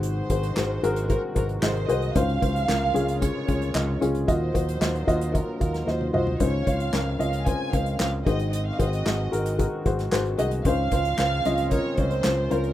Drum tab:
HH |x-xx--xxx-xx-xxx|xxxx--xxx-xx--xx|x-xx-xxxx-xx----|x-xx--xxx-xx--xx|
CP |----x-------x---|----x-------x---|----x-----------|----x-------x---|
SD |----o-------o---|----o-------o---|----o------oo---|----o-------o---|
T1 |----------------|----------------|-------------o--|----------------|
T2 |----------------|----------------|--------------o-|----------------|
FT |----------------|----------------|---------------o|----------------|
BD |--o-----o-o-----|o-o-----o-o-----|o-o---o-o-o-----|o-o-----o-o---o-|

HH |x-xx--xxx-xx-xxx|x-xx--xxx-xx--xx|
CP |----x-------x---|----x-------x---|
SD |----o------oo---|----o-------o---|
T1 |----------------|----------------|
T2 |----------------|----------------|
FT |----------------|----------------|
BD |--o-----o-o-----|o-o-----o-o-----|